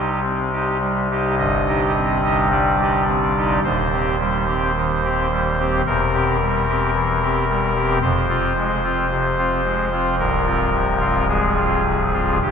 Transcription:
Already playing: C2 C3 D#4 G4
0.24 C4
0.53 D#4 G4
0.81 G3
1.11 D#4 G4
1.39 G1 G2 D#5
1.68 D#4 G4
1.96 C4
2.24 D#4 G4
2.51 G3 D5
2.81 D#4 G4
3.08 C4
3.37 D#4 G4
3.64 D#1 D#2 C5
3.93 C4 G4
4.21 G3
4.48 C4 G4
4.76 D#3
5.04 C4 G4
5.31 G3
5.59 C4 G4
5.86 E1 E2 A#4
6.13 C4 G4
6.41 G3
6.68 C4 G4
6.95 E3
7.22 C4 G4
7.49 G3
7.75 C4 G4
8.02 F1 F2 C5
8.29 C4 F4
8.56 G#3
8.84 C4 F4
9.11 C3
9.38 C4 F4
9.65 G#3
9.92 C4 F4
10.19 C1 C2 A#4
10.46 C4 F4
10.74 C3
11.01 C4 F4
11.28 G#3 G#4
11.57 C4 F4
11.85 C3
12.13 C4 F4
12.42 G1 G2 G4

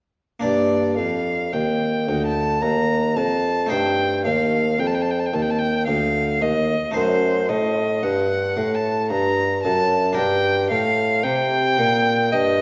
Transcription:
0.40 G2 A#3 D4 D5
0.44 G2
0.97 F2 F5
1.53 D#2 G5
2.08 D2
2.26 A5
2.61 D#2 A#5
3.16 F2 A5
3.66 A3 D#4 C5
3.71 G2 G5
4.25 D#2 F5
4.79 F2 G5
4.87 A5
4.94 G5
5.02 A5
5.11 G5
5.19 A5
5.26 G5
5.33 D#2 A5
5.42 G5
5.50 A5
5.58 G5
5.87 D2 F5
6.41 D#2 D#5
6.91 A3 D#4 C5
6.96 F#2 C5
7.49 A2 D#5
8.03 G2 F#5
8.57 A2
8.75 A5
9.10 G2 A#5
9.63 F#2 A5
10.13 D4 A#4 G5
10.17 G2
10.70 A2 F5
11.23 C3 G5
11.78 A#2
12.32 G2 D#5

